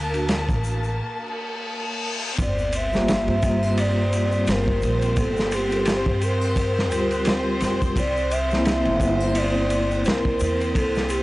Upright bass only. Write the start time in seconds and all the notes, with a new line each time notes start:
Already playing: D2
0.49 A1
2.38 G1
3.28 G2
4.47 G1
4.82 A#1
5.17 G1
6.06 G2
6.92 D2
7.62 F1
7.96 C2
8.86 G1
10.06 C2
10.41 E2
10.75 C2